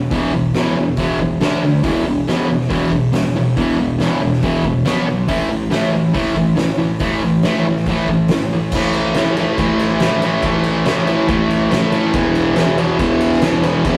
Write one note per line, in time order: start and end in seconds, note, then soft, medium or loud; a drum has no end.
0.11 0.32 E2 medium
0.11 0.32 B2 medium
0.11 0.32 E3 loud
0.11 kick loud
0.11 open hi-hat medium
0.33 0.53 E2 medium
0.33 0.53 B2 medium
0.54 0.75 E2 medium
0.54 0.76 B2 medium
0.54 0.76 E3 loud
0.54 snare loud
0.54 open hi-hat medium
0.77 0.96 E2 medium
0.77 0.96 B2 medium
0.97 1.18 E2 medium
0.97 1.19 B2 medium
0.97 1.19 E3 loud
0.97 kick loud
0.97 open hi-hat medium
1.19 1.39 E2 medium
1.19 1.40 B2 medium
1.19 kick medium
1.41 1.61 D3 medium
1.41 1.62 A3 medium
1.41 1.62 D4 medium
1.41 snare loud
1.41 open hi-hat medium
1.52 snare soft
1.63 1.83 D3 medium
1.63 1.83 A3 medium
1.83 2.04 E2 medium
1.83 2.04 B2 medium
1.83 2.04 E3 medium
1.83 kick loud
1.83 open hi-hat medium
2.06 2.25 E2 medium
2.06 2.26 B2 medium
2.27 2.48 E2 medium
2.27 2.48 B2 medium
2.27 2.49 E3 loud
2.27 snare loud
2.27 open hi-hat medium
2.49 2.68 E2 medium
2.49 2.68 B2 medium
2.61 snare soft
2.69 2.90 E2 medium
2.69 2.90 B2 medium
2.69 2.91 E3 loud
2.69 kick loud
2.69 open hi-hat medium
2.92 3.11 E2 medium
2.92 3.11 B2 medium
2.92 kick medium
3.13 3.33 E2 medium
3.13 3.33 B2 medium
3.13 snare loud
3.13 open hi-hat medium
3.36 3.55 E2 medium
3.36 3.56 B2 medium
3.57 3.77 E2 medium
3.57 3.78 B2 medium
3.57 3.78 E3 loud
3.57 kick loud
3.57 open hi-hat medium
3.79 3.98 E2 medium
3.79 3.98 B2 medium
3.99 4.20 E2 medium
3.99 4.21 B2 medium
3.99 4.21 E3 medium
3.99 snare loud
3.99 open hi-hat medium
4.22 4.41 E2 medium
4.22 4.41 B2 medium
4.33 snare soft
4.43 4.63 E2 medium
4.43 4.64 B2 loud
4.43 4.64 E3 loud
4.43 kick loud
4.43 open hi-hat medium
4.64 4.84 E2 medium
4.64 4.84 B2 medium
4.64 kick medium
4.85 5.06 B2 medium
4.85 5.06 F#3 medium
4.85 5.07 B3 loud
4.85 snare loud
4.85 open hi-hat medium
5.07 5.27 B2 medium
5.07 5.27 F#3 medium
5.28 5.48 A2 medium
5.28 5.49 E3 medium
5.28 5.50 A3 loud
5.28 kick loud
5.28 open hi-hat medium
5.49 5.69 A2 medium
5.49 5.70 E3 medium
5.71 5.92 A2 medium
5.71 5.93 E3 medium
5.71 5.93 A3 loud
5.71 snare loud
5.71 open hi-hat medium
5.93 6.13 A2 medium
5.93 6.13 E3 medium
6.14 6.35 A2 medium
6.14 6.35 E3 medium
6.14 6.36 A3 loud
6.14 kick loud
6.14 open hi-hat medium
6.36 6.55 A2 medium
6.36 6.56 E3 medium
6.36 kick medium
6.56 6.77 A2 medium
6.56 6.77 E3 medium
6.56 snare loud
6.56 open hi-hat medium
6.78 6.99 A2 medium
6.78 6.99 E3 medium
6.99 7.21 A2 medium
6.99 7.21 E3 medium
6.99 7.22 A3 loud
6.99 kick loud
6.99 open hi-hat medium
7.24 7.43 A2 medium
7.24 7.43 E3 medium
7.43 7.65 A2 medium
7.43 7.65 E3 loud
7.43 7.65 A3 loud
7.43 snare loud
7.43 open hi-hat medium
7.67 7.86 A2 medium
7.67 7.86 E3 medium
7.76 snare soft
7.86 8.08 A2 medium
7.86 8.08 E3 medium
7.86 8.09 A3 medium
7.86 kick loud
7.86 open hi-hat medium
8.08 8.28 A2 medium
8.08 8.29 E3 medium
8.08 kick medium
8.28 8.50 A2 medium
8.28 8.50 E3 medium
8.28 snare loud
8.28 open hi-hat medium
8.40 snare soft
8.53 8.72 A2 medium
8.53 8.72 E3 medium
8.72 9.17 A2 medium
8.72 9.18 E3 loud
8.72 9.19 A3 loud
8.72 kick loud
8.72 crash loud
8.93 ride medium
9.14 9.38 A2 medium
9.14 9.39 E3 medium
9.14 snare loud
9.14 ride loud
9.19 9.40 A3 medium
9.37 9.58 A2 medium
9.37 9.60 E3 medium
9.37 9.59 A3 loud
9.37 ride medium
9.58 9.99 A2 loud
9.58 10.01 E3 loud
9.58 10.01 A3 loud
9.58 kick loud
9.58 ride loud
9.79 ride medium
10.00 10.22 A2 medium
10.00 10.24 E3 medium
10.00 10.24 A3 medium
10.00 snare loud
10.00 ride loud
10.22 10.44 A2 medium
10.22 10.45 E3 medium
10.22 10.44 A3 loud
10.22 ride medium
10.42 10.86 A2 loud
10.42 10.87 E3 loud
10.42 10.87 A3 loud
10.42 kick loud
10.42 ride loud
10.64 ride medium
10.86 11.07 A2 medium
10.86 11.08 E3 medium
10.86 11.08 A3 medium
10.86 snare loud
10.86 ride loud
11.07 11.27 A2 medium
11.07 11.28 E3 loud
11.07 11.28 A3 loud
11.07 ride medium
11.28 11.70 A2 loud
11.28 11.72 E3 loud
11.28 11.71 A3 loud
11.28 kick loud
11.28 ride loud
11.51 ride medium
11.71 11.90 A2 medium
11.71 11.92 E3 medium
11.71 11.92 A3 loud
11.71 snare loud
11.71 ride loud
11.91 12.12 A2 medium
11.91 12.14 E3 medium
11.91 12.13 A3 loud
11.91 ride medium
12.13 12.56 E2 medium
12.13 12.56 B2 loud
12.13 12.57 E3 loud
12.13 kick loud
12.13 ride loud
12.35 ride medium
12.56 12.76 E2 medium
12.56 12.77 B2 medium
12.56 12.78 E3 medium
12.56 snare loud
12.56 ride loud
12.78 12.98 E2 loud
12.78 12.99 B2 loud
12.78 12.99 E3 loud
12.78 ride medium
12.99 13.42 E2 loud
12.99 13.42 B2 loud
12.99 13.43 E3 loud
12.99 kick loud
12.99 ride loud
13.21 ride medium
13.32 snare soft
13.42 13.62 E2 medium
13.42 13.63 B2 medium
13.42 13.64 E3 medium
13.42 snare loud
13.42 ride loud
13.63 13.84 E2 medium
13.63 13.85 B2 medium
13.63 13.85 E3 medium
13.63 ride medium
13.85 13.97 E2 loud
13.85 13.97 B2 loud
13.85 13.97 E3 loud
13.85 kick loud
13.85 ride loud